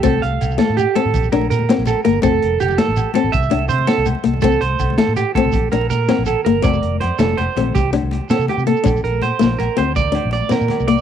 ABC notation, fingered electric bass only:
X:1
M:12/8
L:1/16
Q:3/8=109
K:F
V:1 name="Fingered electric bass" clef=bass
C,,2 C,,2 C,,2 z A,,2 z2 A,, B,,,2 B,,,2 B,,2 z B,,,2 z G,,,2 | F,,,2 F,,,2 F,,,2 z A,,,2 z2 A,,, C,,2 C,,2 C,2 z C,,2 z C,,2 | C,,2 C,,2 C,,2 z A,,2 z2 C,, B,,,2 B,,,2 B,,2 z B,,,2 z G,,,2 | F,,,2 F,,,2 F,, z F,,,2 F,,, z B,,,2 C,,3 C,,2 z2 C, z C,2 z |
B,,,2 B,,,2 B,, z B,,,2 B,,, z D,,4- D,, B,,,2 z2 B,, z C,,2 z |]